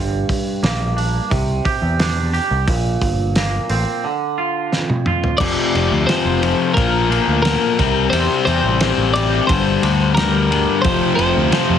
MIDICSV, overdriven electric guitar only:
0, 0, Header, 1, 2, 480
1, 0, Start_track
1, 0, Tempo, 680272
1, 1888, Time_signature, 4, 2, 24, 8
1, 8317, End_track
2, 0, Start_track
2, 0, Title_t, "Overdriven electric guitar"
2, 0, Program_c, 0, 29
2, 3812, Note_on_c, 0, 41, 74
2, 3816, Note_on_c, 0, 48, 84
2, 3819, Note_on_c, 0, 53, 93
2, 4047, Note_off_c, 0, 41, 0
2, 4048, Note_off_c, 0, 48, 0
2, 4055, Note_off_c, 0, 53, 0
2, 4056, Note_on_c, 0, 41, 74
2, 4056, Note_on_c, 0, 48, 78
2, 4063, Note_on_c, 0, 53, 78
2, 4285, Note_off_c, 0, 41, 0
2, 4293, Note_off_c, 0, 48, 0
2, 4293, Note_off_c, 0, 53, 0
2, 4294, Note_on_c, 0, 41, 71
2, 4301, Note_on_c, 0, 53, 85
2, 4302, Note_on_c, 0, 48, 89
2, 4529, Note_off_c, 0, 41, 0
2, 4531, Note_off_c, 0, 48, 0
2, 4532, Note_off_c, 0, 53, 0
2, 4537, Note_on_c, 0, 41, 73
2, 4540, Note_on_c, 0, 48, 73
2, 4540, Note_on_c, 0, 53, 81
2, 4762, Note_off_c, 0, 41, 0
2, 4762, Note_off_c, 0, 53, 0
2, 4763, Note_off_c, 0, 48, 0
2, 4770, Note_on_c, 0, 53, 90
2, 4771, Note_on_c, 0, 46, 91
2, 4773, Note_on_c, 0, 58, 92
2, 5000, Note_off_c, 0, 46, 0
2, 5003, Note_off_c, 0, 53, 0
2, 5008, Note_off_c, 0, 58, 0
2, 5009, Note_on_c, 0, 46, 77
2, 5012, Note_on_c, 0, 53, 75
2, 5016, Note_on_c, 0, 58, 82
2, 5246, Note_off_c, 0, 46, 0
2, 5249, Note_off_c, 0, 53, 0
2, 5249, Note_off_c, 0, 58, 0
2, 5254, Note_on_c, 0, 46, 79
2, 5257, Note_on_c, 0, 53, 88
2, 5258, Note_on_c, 0, 58, 95
2, 5480, Note_off_c, 0, 46, 0
2, 5482, Note_off_c, 0, 53, 0
2, 5482, Note_off_c, 0, 58, 0
2, 5493, Note_on_c, 0, 48, 82
2, 5499, Note_on_c, 0, 55, 92
2, 5501, Note_on_c, 0, 60, 83
2, 5726, Note_off_c, 0, 48, 0
2, 5727, Note_off_c, 0, 55, 0
2, 5732, Note_off_c, 0, 60, 0
2, 5734, Note_on_c, 0, 48, 91
2, 5736, Note_on_c, 0, 55, 84
2, 5741, Note_on_c, 0, 60, 94
2, 5975, Note_off_c, 0, 48, 0
2, 5981, Note_off_c, 0, 55, 0
2, 5981, Note_off_c, 0, 60, 0
2, 5983, Note_on_c, 0, 48, 74
2, 5989, Note_on_c, 0, 55, 76
2, 5990, Note_on_c, 0, 60, 77
2, 6209, Note_off_c, 0, 48, 0
2, 6211, Note_off_c, 0, 55, 0
2, 6217, Note_off_c, 0, 60, 0
2, 6217, Note_on_c, 0, 48, 82
2, 6219, Note_on_c, 0, 55, 80
2, 6225, Note_on_c, 0, 60, 84
2, 6455, Note_off_c, 0, 48, 0
2, 6460, Note_off_c, 0, 55, 0
2, 6461, Note_off_c, 0, 60, 0
2, 6463, Note_on_c, 0, 48, 85
2, 6469, Note_on_c, 0, 55, 82
2, 6469, Note_on_c, 0, 60, 87
2, 6684, Note_off_c, 0, 48, 0
2, 6687, Note_off_c, 0, 55, 0
2, 6687, Note_off_c, 0, 60, 0
2, 6698, Note_on_c, 0, 43, 95
2, 6705, Note_on_c, 0, 50, 87
2, 6708, Note_on_c, 0, 55, 107
2, 6934, Note_off_c, 0, 43, 0
2, 6937, Note_off_c, 0, 50, 0
2, 6941, Note_off_c, 0, 55, 0
2, 6942, Note_on_c, 0, 43, 70
2, 6946, Note_on_c, 0, 50, 84
2, 6950, Note_on_c, 0, 55, 88
2, 7169, Note_off_c, 0, 43, 0
2, 7169, Note_off_c, 0, 50, 0
2, 7172, Note_off_c, 0, 55, 0
2, 7177, Note_on_c, 0, 43, 83
2, 7177, Note_on_c, 0, 50, 93
2, 7181, Note_on_c, 0, 55, 94
2, 7408, Note_off_c, 0, 43, 0
2, 7416, Note_off_c, 0, 50, 0
2, 7416, Note_off_c, 0, 55, 0
2, 7416, Note_on_c, 0, 43, 87
2, 7424, Note_on_c, 0, 50, 81
2, 7425, Note_on_c, 0, 55, 83
2, 7639, Note_off_c, 0, 43, 0
2, 7642, Note_off_c, 0, 50, 0
2, 7643, Note_off_c, 0, 55, 0
2, 7654, Note_on_c, 0, 41, 82
2, 7661, Note_on_c, 0, 48, 88
2, 7662, Note_on_c, 0, 53, 98
2, 7879, Note_off_c, 0, 41, 0
2, 7885, Note_off_c, 0, 53, 0
2, 7886, Note_off_c, 0, 48, 0
2, 7888, Note_on_c, 0, 41, 80
2, 7893, Note_on_c, 0, 53, 87
2, 7894, Note_on_c, 0, 48, 75
2, 8129, Note_off_c, 0, 41, 0
2, 8129, Note_off_c, 0, 48, 0
2, 8132, Note_off_c, 0, 53, 0
2, 8137, Note_on_c, 0, 48, 90
2, 8138, Note_on_c, 0, 41, 86
2, 8141, Note_on_c, 0, 53, 94
2, 8317, Note_off_c, 0, 41, 0
2, 8317, Note_off_c, 0, 48, 0
2, 8317, Note_off_c, 0, 53, 0
2, 8317, End_track
0, 0, End_of_file